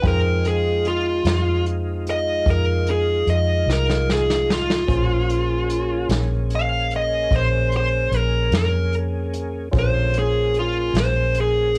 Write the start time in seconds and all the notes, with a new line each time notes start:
0.02 F2 F3 G#3 D#4 F4 G#4 C5 G5, kick, closed hi-hat
0.07 A#4
0.45 G#4, closed hi-hat
0.85 F4, closed hi-hat
1.25 F2, snare, closed hi-hat
1.66 closed hi-hat
2.07 D#5, closed hi-hat
2.46 F2, kick, closed hi-hat
2.50 A#4
2.87 closed hi-hat
2.91 G#4
3.27 F2 D#5, closed hi-hat
3.66 C2, snare
3.73 A#4
3.90 snare
4.10 G#4, snare
4.30 snare
4.50 F4, snare
4.70 snare
4.87 A#1 A#3 C#4 F4 G#4 C5, kick, closed hi-hat
5.30 closed hi-hat
5.70 closed hi-hat
6.09 A#1, snare, closed hi-hat
6.50 closed hi-hat
6.55 F5
6.91 closed hi-hat
6.96 D#5
7.31 A#1, kick, closed hi-hat
7.36 C5
7.72 closed hi-hat
7.77 C5
8.11 A#1, closed hi-hat
8.17 A#4
8.51 F2, snare, closed hi-hat
8.56 A#4
8.93 closed hi-hat
9.33 closed hi-hat
9.71 A#1 D3 A3 A#3 C#4 F4 G#4 C5, kick, closed hi-hat
9.79 C5
10.14 A#3 C#4 G#4, closed hi-hat
10.19 G#4
10.54 closed hi-hat
10.59 F4
10.94 A#1, snare, closed hi-hat
11.00 C5
11.34 closed hi-hat
11.40 G#4
11.75 closed hi-hat